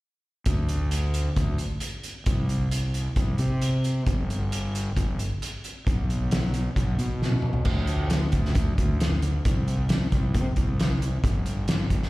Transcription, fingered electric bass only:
0.46 D2
1.36 D2
2.27 C2
3.16 C2
3.39 C3
4.07 G1
4.97 G1
5.87 B1
6.76 B1
6.98 B2
7.66 D2
8.33 D2
8.56 D2
8.78 D2
9.45 C2
10.13 C2
10.35 C3
10.57 C2
11.23 G1
11.91 G1

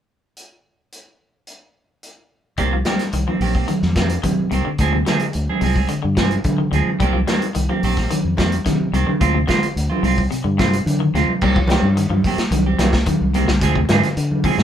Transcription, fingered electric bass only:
2.58 C2
3.13 C2
3.40 A#1
3.83 F2
4.24 C3
4.52 C2
4.79 D2
5.35 D2
5.62 C2
6.04 G2
6.45 D3
6.72 D2
7.00 C2
7.56 C2
7.83 A#1
8.25 F2
8.66 C3
8.93 C2
9.21 D2
9.76 D2
10.03 C2
10.44 G2
10.86 D3
11.14 D2
11.42 C2
11.82 G2
12.10 G2
12.38 muted fingered electric bass stroke
12.51 C2
12.79 C2
13.21 C2
13.48 C2
13.62 D2
13.89 G#2
14.17 D3
14.58 G#2

